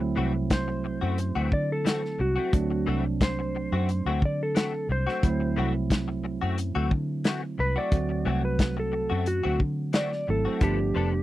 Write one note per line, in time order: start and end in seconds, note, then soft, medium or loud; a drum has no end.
0.00 0.15 D2 medium
0.00 2.49 F#3 medium
0.00 2.49 A3 medium
0.00 2.49 C4 medium
0.00 2.49 E4 medium
0.00 muted clean electric guitar stroke soft
0.16 0.98 C2 medium
0.16 0.34 E3 medium
0.16 0.34 A3 medium
0.16 0.33 C4 medium
0.16 0.33 F#4 medium
0.34 muted clean electric guitar stroke soft
0.50 1.50 C5 medium
0.50 kick medium
0.50 snare loud
0.50 closed hi-hat medium
0.68 muted clean electric guitar stroke soft
0.84 muted clean electric guitar stroke soft
1.01 1.34 F#2 medium
1.01 1.17 A3 soft
1.01 1.18 C4 soft
1.01 1.18 F#4 soft
1.18 muted clean electric guitar stroke soft
1.18 closed hi-hat medium
1.35 1.51 D2 medium
1.35 1.50 E3 medium
1.35 1.50 A3 medium
1.35 1.51 C4 medium
1.35 1.52 F#4 medium
1.51 2.16 D3 medium
1.51 1.70 D5 medium
1.51 muted clean electric guitar stroke soft
1.51 kick medium
1.72 2.19 A4 medium
1.85 2.03 E3 medium
1.85 2.03 A3 medium
1.85 2.02 C4 medium
1.85 2.01 F#4 medium
1.85 snare loud
1.85 closed hi-hat medium
2.03 muted clean electric guitar stroke soft
2.03 snare soft
2.19 2.36 C2 medium
2.19 2.86 F#4 medium
2.19 muted clean electric guitar stroke soft
2.36 2.57 A3 soft
2.36 2.57 C4 soft
2.36 2.56 F#4 soft
2.53 2.85 D2 medium
2.53 5.19 F#3 medium
2.53 5.19 A3 medium
2.53 5.19 C4 medium
2.53 5.19 D4 medium
2.53 kick loud
2.53 closed hi-hat medium
2.70 muted clean electric guitar stroke soft
2.87 3.68 C2 medium
2.87 3.04 E3 medium
2.87 3.05 A3 medium
2.87 3.04 C4 medium
2.87 3.04 F#4 medium
3.05 muted clean electric guitar stroke soft
3.21 4.20 C5 medium
3.21 kick medium
3.21 snare loud
3.21 closed hi-hat medium
3.39 muted clean electric guitar stroke soft
3.55 muted clean electric guitar stroke soft
3.72 4.04 F#2 medium
3.72 3.88 A3 soft
3.72 3.89 C4 soft
3.72 3.88 F#4 soft
3.89 muted clean electric guitar stroke soft
3.89 closed hi-hat medium
4.06 4.21 D2 medium
4.06 4.21 E3 soft
4.06 4.22 A3 medium
4.06 4.22 C4 medium
4.06 4.22 F#4 medium
4.22 4.86 D3 medium
4.22 4.41 D5 medium
4.22 muted clean electric guitar stroke soft
4.22 kick medium
4.43 4.89 A4 medium
4.55 4.73 E3 medium
4.55 4.74 A3 medium
4.55 4.73 C4 medium
4.55 4.72 F#4 medium
4.55 snare loud
4.55 closed hi-hat medium
4.73 muted clean electric guitar stroke soft
4.89 5.06 C2 loud
4.89 5.56 C5 medium
4.89 muted clean electric guitar stroke soft
5.07 5.28 A3 soft
5.07 5.27 C4 soft
5.07 5.26 F#4 medium
5.07 snare soft
5.23 5.55 D2 loud
5.23 7.89 F#3 medium
5.23 7.89 A3 medium
5.23 7.89 C4 medium
5.23 7.89 E4 medium
5.23 kick loud
5.23 closed hi-hat medium
5.40 muted clean electric guitar stroke soft
5.57 6.38 C2 medium
5.57 5.74 E3 medium
5.57 5.75 A3 medium
5.57 5.74 C4 medium
5.57 5.73 F#4 medium
5.74 muted clean electric guitar stroke soft
5.90 kick medium
5.90 snare loud
5.90 closed hi-hat medium
6.08 muted clean electric guitar stroke soft
6.24 muted clean electric guitar stroke soft
6.41 6.74 F#2 medium
6.41 6.57 A3 soft
6.41 6.57 C4 medium
6.41 6.58 F#4 medium
6.58 muted clean electric guitar stroke soft
6.58 closed hi-hat medium
6.75 6.91 D2 medium
6.75 6.90 E3 medium
6.75 6.91 A3 medium
6.75 6.91 C4 medium
6.75 6.91 F#4 medium
6.91 7.55 D3 medium
6.91 muted clean electric guitar stroke soft
6.91 kick medium
7.24 7.43 E3 medium
7.24 7.43 A3 medium
7.24 7.42 C4 medium
7.24 7.41 F#4 medium
7.24 snare loud
7.24 closed hi-hat medium
7.43 muted clean electric guitar stroke soft
7.58 7.76 C2 medium
7.58 7.77 B4 medium
7.58 muted clean electric guitar stroke soft
7.76 7.97 A3 soft
7.76 7.96 C4 soft
7.76 7.96 F#4 soft
7.76 8.43 D5 medium
7.92 8.24 D2 medium
7.92 10.24 F#3 medium
7.92 10.24 A3 medium
7.92 10.24 C4 medium
7.92 10.24 F#4 medium
7.92 kick loud
7.92 closed hi-hat medium
8.09 muted clean electric guitar stroke soft
8.25 9.07 C2 medium
8.25 8.43 E3 medium
8.25 8.43 A3 medium
8.25 8.43 C4 medium
8.25 8.42 F#4 medium
8.43 8.77 B4 medium
8.43 muted clean electric guitar stroke soft
8.59 kick medium
8.59 snare loud
8.59 closed hi-hat medium
8.77 9.27 A4 medium
8.77 muted clean electric guitar stroke soft
8.92 muted clean electric guitar stroke soft
9.10 9.43 F#2 medium
9.10 9.25 A3 soft
9.10 9.26 C4 soft
9.10 9.26 F#4 medium
9.26 9.60 F#4 medium
9.26 muted clean electric guitar stroke soft
9.26 closed hi-hat medium
9.43 9.59 D2 medium
9.43 9.59 E3 soft
9.43 9.60 A3 medium
9.43 9.60 C4 medium
9.43 9.60 F#4 medium
9.60 10.24 D3 medium
9.60 muted clean electric guitar stroke soft
9.60 kick medium
9.93 10.12 E3 medium
9.93 10.12 A3 medium
9.93 10.12 C4 medium
9.93 10.10 F#4 medium
9.93 10.28 D5 medium
9.93 snare loud
9.93 closed hi-hat medium
10.12 muted clean electric guitar stroke soft
10.12 snare soft
10.28 10.45 G#1 medium
10.28 10.62 F#3 soft
10.28 10.60 A3 soft
10.28 10.62 C4 soft
10.28 10.62 E4 soft
10.28 10.62 A4 medium
10.28 muted clean electric guitar stroke soft
10.45 10.62 A3 soft
10.45 10.62 C4 soft
10.45 10.61 F#4 soft
10.61 10.93 G1 medium
10.61 11.23 F3 medium
10.61 10.79 F3 medium
10.61 11.23 A3 medium
10.61 11.23 B3 medium
10.61 10.79 B3 medium
10.61 11.23 D4 medium
10.61 10.79 D4 medium
10.61 11.23 G4 medium
10.61 10.78 A4 medium
10.61 kick loud
10.61 closed hi-hat medium
10.79 muted clean electric guitar stroke soft
10.95 11.23 F1 medium
10.95 11.13 F3 medium
10.95 11.13 B3 medium
10.95 11.12 D4 medium
10.95 11.12 A4 medium
11.13 muted clean electric guitar stroke soft